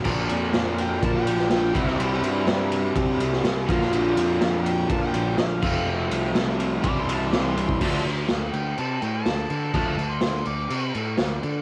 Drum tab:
CC |x---------------|----------------|--------------x-|----------------|
RD |--x-x-x-x-x-x-x-|x-x-x-x-x-x-x-x-|x-x-x-x-x-x-x---|--x-x-x-x-x-x-x-|
SD |----o------oo--o|----o------oo--o|----o-------o---|----o-------o---|
BD |o-------o-----o-|--------o-----o-|--------o-----o-|--------o------o|

CC |x-x-x-x-x-x-x-x-|x-x-x-x-x-x-x-x-|
RD |----------------|----------------|
SD |----o-------o---|----o-------o---|
BD |o---------------|o---------------|